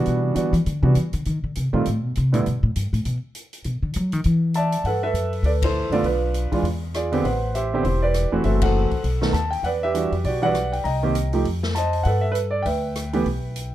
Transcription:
Already playing: grand piano E3 G3 B3 D4 F#4
0.06 upright bass B2, closed hi-hat
0.24 upright bass C3
0.34 upright bass D3, grand piano E3 G3 B3 D4 F#4, closed hi-hat
0.53 upright bass E3, closed hi-hat
0.66 upright bass D3, closed hi-hat
0.83 upright bass C3, grand piano E3 G3 B3 D4 F#4
0.95 upright bass E3, closed hi-hat
1.13 upright bass D3, closed hi-hat
1.25 upright bass D#3, closed hi-hat
1.44 upright bass D3
1.55 upright bass C3, closed hi-hat
1.73 upright bass A#2, grand piano D#3 G3 A3 C4 F4
1.86 upright bass A2, closed hi-hat
2.03 upright bass B2
2.15 upright bass C3, closed hi-hat
2.32 upright bass A#2, grand piano D3 G3 A3 B3 E4, closed hi-hat
2.46 upright bass B2, closed hi-hat
2.63 upright bass A2
2.76 upright bass G2, closed hi-hat
2.93 upright bass A2, closed hi-hat
3.05 upright bass B2, closed hi-hat
3.35 closed hi-hat
3.53 closed hi-hat
3.64 upright bass B2, closed hi-hat
3.83 upright bass D3
3.94 upright bass F#3, closed hi-hat
4.12 upright bass D#3, closed hi-hat
4.24 upright bass E3, closed hi-hat
4.54 grand piano D5 E5 A5, closed hi-hat
4.72 closed hi-hat
4.84 upright bass G2, grand piano A4 B4 F#5, open hi-hat
5.03 grand piano A4 B4 E5
5.13 upright bass F#2, closed hi-hat
5.33 open hi-hat
5.43 upright bass D2, grand piano A4 B4 D5, open hi-hat
5.62 grand piano E4 A4 C5, kick, ride
5.90 upright bass F#2, grand piano D3 A3 B3 F4 D5, open hi-hat
6.03 upright bass B1, grand piano B4, open hi-hat
6.07 grand piano D4 F4
6.34 closed hi-hat
6.52 grand piano E3 G#3 D4 F4, kick, open hi-hat
6.63 upright bass E2, open hi-hat
6.94 grand piano F4 G#4 D5, cross-stick, closed hi-hat
7.12 grand piano D3 B3 C4 G4, open hi-hat
7.24 upright bass A1, grand piano B4 C5 F#5, open hi-hat
7.55 grand piano G4 C5 E5, closed hi-hat
7.74 grand piano D3 B3 C4 G4
7.83 upright bass E1, grand piano E4 G4 C5, open hi-hat
8.02 grand piano G4 B4 D5
8.14 cross-stick, closed hi-hat
8.32 upright bass E1, grand piano E3 A3 C4 F#4
8.44 upright bass F#1, grand piano E3 A3 C4 F#4 A4 C5 E5, open hi-hat
8.62 grand piano A4 C5 F#5, kick, ride
8.91 kick, open hi-hat
9.04 upright bass B1, open hi-hat
9.21 grand piano D#3 A3 B3 A4, snare
9.33 upright bass D#2, grand piano A5, cross-stick, closed hi-hat
9.51 grand piano G5, open hi-hat
9.63 upright bass E2, grand piano B4 D5 F#5, open hi-hat
9.83 grand piano G4 B4 E5
9.94 grand piano E3 G3 D4 F#4, closed hi-hat
10.12 upright bass F2, open hi-hat
10.24 upright bass B1, grand piano G4 D5, open hi-hat
10.28 grand piano F#4
10.42 grand piano E3 G3 D4 F#4 B4 D5 F#5
10.55 cross-stick, closed hi-hat
10.72 grand piano G5, open hi-hat
10.84 upright bass C2, grand piano D#5 G5 A#5, open hi-hat
11.03 grand piano D#3 A#3 C4 G4
11.15 closed hi-hat
11.33 grand piano F3 A3 D#4 G4, open hi-hat
11.44 upright bass F2, open hi-hat
11.63 snare
11.75 grand piano C5 D#5 A5, cross-stick, closed hi-hat
11.93 open hi-hat
12.03 upright bass G2, grand piano A4 B4 F#5, open hi-hat
12.21 grand piano E5
12.32 grand piano B4, closed hi-hat
12.51 grand piano D5
12.62 upright bass D2, grand piano B4 E5 G5, open hi-hat
12.96 cross-stick, closed hi-hat
13.13 grand piano E3 A3 B3 G4, open hi-hat
13.25 upright bass B1, open hi-hat
13.56 closed hi-hat

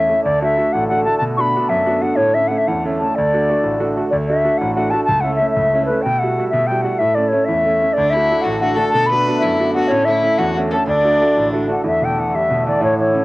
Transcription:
Already playing: accordion A3, flute E5
0.09 grand piano A3 C#4 E4
0.21 accordion D3 A3, flute D5
0.25 grand piano D2
0.42 grand piano A3 D4 F#4, flute E5
0.57 grand piano A3 D4 F#4
0.73 grand piano A1, flute F#5
0.88 grand piano A3 D4 F#4, flute F#5
1.04 grand piano A3 D4 F#4, flute A5
1.18 grand piano B2, flute A5
1.37 grand piano B3 D4 F#4, flute B5 C#6
1.56 grand piano B3 D4 F#4
1.69 grand piano F#2, flute E5
1.86 grand piano B3 D4 F#4
2.01 grand piano B3 D4 F#4, flute F#5
2.16 grand piano A2, flute C#5
2.34 grand piano A3 C#4 E4, flute E5
2.48 grand piano A3 C#4 E4, flute F#5
2.57 flute E5
2.67 grand piano E2, flute F#5
2.85 grand piano A3 C#4 E4
3.00 grand piano A3 C#4 E4, flute A5
3.15 grand piano D2, flute D5
3.33 grand piano A3 D4 F#4
3.50 grand piano A3 D4 F#4
3.63 grand piano A1
3.80 grand piano A3 D4 F#4
3.96 grand piano A3 D4 F#4
4.10 grand piano D2, accordion A3, flute D5
4.27 grand piano A3 D4 F#4, flute E5
4.44 grand piano A3 D4 F#4
4.58 grand piano A1, flute F#5
4.74 grand piano A3 D4 F#4, flute F#5
4.90 grand piano A3 D4 F#4, flute A5
5.04 flute A5
5.09 grand piano C#2
5.20 grand piano A3 C#4 E4, flute F#5
5.35 flute E5
5.39 grand piano A3 C#4 E4
5.51 flute E5
5.56 grand piano C#2
5.74 grand piano A3 C#4 E4
5.85 flute B4
5.89 grand piano A3 C#4 E4
6.02 grand piano B2, flute G5
6.19 grand piano G3 E4, flute F#5
6.23 grand piano F#4
6.38 grand piano G3 E4 F#4
6.49 flute E5
6.53 grand piano B2
6.67 grand piano G3 E4 F#4, flute G5
6.81 grand piano G3 E4 F#4, flute F#5
6.99 grand piano A2, flute E5
7.15 grand piano A3 C#4 E4, flute D5
7.28 grand piano A3, flute C#5
7.33 grand piano C#4 E4
7.45 grand piano E2, flute E5
7.66 grand piano A3 C#4 E4
7.82 grand piano A3 C#4 E4
7.93 accordion D3 A3, flute D5
7.97 grand piano D2, fiddle D4
8.10 fiddle E4, flute E5
8.16 grand piano A3 D4 F#4
8.31 grand piano A3 D4 F#4
8.41 fiddle F#4, flute F#5
8.45 grand piano A1
8.60 grand piano A3 D4 F#4, fiddle F#4, flute F#5
8.75 grand piano A3 D4 F#4, fiddle A4, flute A5
8.89 fiddle A4, flute A5
8.94 grand piano B2
9.06 flute B5
9.11 grand piano B3 D4 F#4, fiddle B4
9.27 grand piano B3 D4 F#4
9.38 fiddle E4, flute E5
9.44 grand piano F#2
9.59 grand piano B3 D4 F#4
9.73 grand piano B3 D4 F#4, fiddle F#4, flute F#5
9.88 grand piano A2, fiddle C#4, flute C#5
10.05 grand piano A3, fiddle E4, flute E5
10.09 grand piano C#4 E4
10.23 grand piano A3 C#4 E4
10.38 grand piano E2, fiddle F#4, flute F#5
10.57 grand piano A3 C#4 E4
10.71 grand piano A3 C#4 E4, fiddle A4, flute A5
10.87 grand piano D2, fiddle D4, flute D5
11.05 grand piano A3 D4 F#4
11.21 grand piano A3 D4 F#4
11.37 grand piano A1
11.53 grand piano A3 D4 F#4
11.68 grand piano A3 D4 F#4, flute F#5
11.83 grand piano E2, accordion D3 A3, flute E5
12.01 grand piano B2, flute G5
12.18 grand piano E3, flute F#5
12.34 grand piano G3, flute E5
12.50 grand piano B2
12.66 grand piano E3, flute D5
12.81 grand piano A2, flute C#5
12.99 grand piano E3, flute C#5
13.14 grand piano C#4

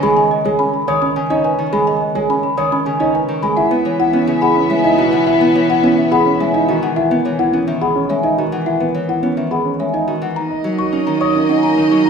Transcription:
Already playing: harp C#3 D#3 B3 C#4 D#4
0.03 harp G#3, grand piano G#4, marimba B5, celesta B5
0.17 grand piano D#5, marimba G#5
0.31 celesta D#5
0.45 harp G#3, grand piano G#4, marimba C#5
0.59 grand piano C#4, marimba B5
0.74 celesta B5
0.88 harp D#3, grand piano C#5, marimba G#5, celesta D#6
1.02 grand piano C#4, marimba B5
1.16 harp C#3, celesta G#5
1.30 harp C#4, grand piano D#4, marimba C#5, celesta D#5
1.44 grand piano B4, marimba G#5
1.59 harp D#3
1.73 harp G#3, grand piano G#4, marimba B5, celesta B5
1.87 grand piano D#5, marimba G#5
2.01 celesta D#5
2.15 harp G#3, grand piano G#4, marimba C#5
2.29 grand piano C#4, marimba B5
2.43 celesta B5
2.57 harp D#3, grand piano C#5, marimba G#5, celesta D#6
2.72 grand piano C#4, marimba B5
2.86 harp C#3, celesta G#5
3.00 harp C#4, grand piano D#4, marimba C#5, celesta D#5
3.15 grand piano B4, marimba G#5
3.29 harp D#3
3.42 harp G#3, grand piano G#4, celesta B5, marimba B5
3.57 violin section B3 E5, grand piano E4, alto flute E4, marimba E5, celesta F#5
3.71 harp B3, grand piano B4
3.85 harp E3, marimba C#5
3.99 grand piano E4, marimba F#5
4.13 harp B3, grand piano C#4
4.27 harp C#3, marimba E5
4.42 grand piano G#4, marimba F#5, celesta B5
4.56 grand piano C#4
4.70 harp G#3, marimba C#5, celesta E5
4.84 grand piano D#4, celesta D#5, marimba E5
4.98 harp B2, grand piano F#4
5.12 harp E3, marimba F#5
5.27 grand piano E4, marimba E5, celesta F#5
5.41 harp B3, grand piano B4
5.55 harp E3, marimba C#5
5.69 grand piano E4, marimba F#5
5.83 harp B3, grand piano C#4
5.98 marimba E5
6.11 grand piano G#4, marimba F#5, celesta B5
6.26 grand piano C#4
6.40 harp G#3, marimba C#5, celesta E5
6.54 grand piano D#4, celesta D#5, marimba E5
6.68 harp D#3, grand piano F#4
6.83 harp E3, marimba F#5
6.96 grand piano E4, marimba E5, celesta F#5
7.11 harp B3, grand piano B4
7.25 harp E3, marimba C#5
7.39 grand piano E4, marimba F#5
7.53 harp B3, grand piano C#4
7.67 harp D#3, marimba E5
7.81 grand piano G#4, marimba F#5, celesta B5
7.96 grand piano C#4
8.09 harp G#3, marimba C#5, celesta E5
8.23 grand piano D#4, celesta D#5, marimba E5
8.38 harp D#3, grand piano F#4
8.52 harp E3, marimba F#5
8.66 grand piano E4, marimba E5, celesta F#5
8.80 harp B3, grand piano B4
8.95 harp E3, marimba C#5
9.09 grand piano E4, marimba F#5
9.23 harp B3, grand piano C#4
9.37 harp D#3, marimba E5
9.51 grand piano G#4, marimba F#5, celesta B5
9.65 grand piano C#4
9.79 harp G#3, marimba C#5, celesta E5
9.94 grand piano D#4, celesta D#5, marimba E5
10.08 harp D#3, grand piano F#4
10.22 harp E3, marimba F#5
10.36 violin section A#3 D#5, alto flute D#4, celesta A#5, marimba A#5
10.50 grand piano D#5
10.64 harp F#3, marimba D#5
10.79 grand piano F#4, marimba C#6
10.92 grand piano C#4, harp D#4
11.07 harp D#3, marimba A#5
11.21 grand piano C#5, marimba C#6, celesta D#6
11.35 grand piano C#4
11.49 harp C#4, marimba D#5, celesta F#5
11.63 grand piano D#4, marimba A#5
11.77 harp D#3, grand piano A#4
11.91 harp F#3, marimba C#6
12.06 marimba A#5, celesta A#5

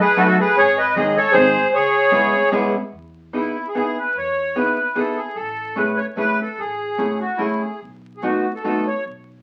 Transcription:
0.00 accordion G#4 B4
0.17 hollow-body jazz guitar F#3 A3 D#4 F#4 A4, accordion F#4 A4
0.21 accordion B4
0.26 accordion F#4 A4
0.40 accordion G#4 B4
0.55 upright bass G#1, accordion G#4 C#5
0.78 accordion B4 D#5
0.96 hollow-body jazz guitar D#3 G#3 C#4 D#4 G#4, accordion G#4 D#5
1.16 accordion A4 C#5
1.32 upright bass G#1, hollow-body jazz guitar D#3 G#3 C4 D#4 G#4, accordion G#4 C5
1.73 upright bass C#2, accordion G#4 C#5
2.11 hollow-body jazz guitar G#3 B3 C#4 E4 G#4
2.52 hollow-body jazz guitar G#3 B3 C#4 E4 G#4
2.92 upright bass E2
3.33 hollow-body jazz guitar B3 D#4 E4 G#4, accordion E4
3.68 accordion G#4
3.75 hollow-body jazz guitar B3 D#4 E4 G#4, accordion G#4
3.99 accordion B4
4.15 upright bass E2, accordion C#5
4.56 hollow-body jazz guitar B3 D#4 E4 G#4, accordion B4
4.95 hollow-body jazz guitar B3 D#4 E4 G#4, accordion A4
5.16 accordion G#4
5.35 upright bass A1, accordion A4
5.76 hollow-body jazz guitar A3 C#4 E4 G#4, accordion B4
5.97 accordion C#5
6.17 hollow-body jazz guitar A3 C#4 E4 G#4, accordion B4
6.42 accordion A4
6.58 upright bass A1, accordion G#4
6.98 hollow-body jazz guitar A3 C#4 E4 G#4
7.20 accordion F#4
7.37 hollow-body jazz guitar A3 C#4 E4 G#4, accordion E4
7.61 accordion G#4
7.82 upright bass B1
8.17 accordion G#4
8.22 hollow-body jazz guitar A3 B3 D#4 F#4, accordion F#4
8.55 accordion A4
8.64 hollow-body jazz guitar A3 B3 D#4 F#4, accordion A4
8.87 accordion C#5
9.06 upright bass B1

